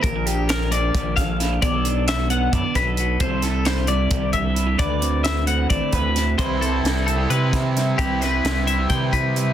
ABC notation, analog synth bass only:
X:1
M:7/8
L:1/16
Q:1/4=132
K:Clyd
V:1 name="Analog synth bass" clef=bass
_B,,,8 B,,,2 B,,,4 | B,,,8 F,, z B,,,4 | C,,8 C,,2 C,,4 | D,,8 A,,, z D,,4 |
C,,4 C,,4 C,6 | C,,4 C,,4 C,6 |]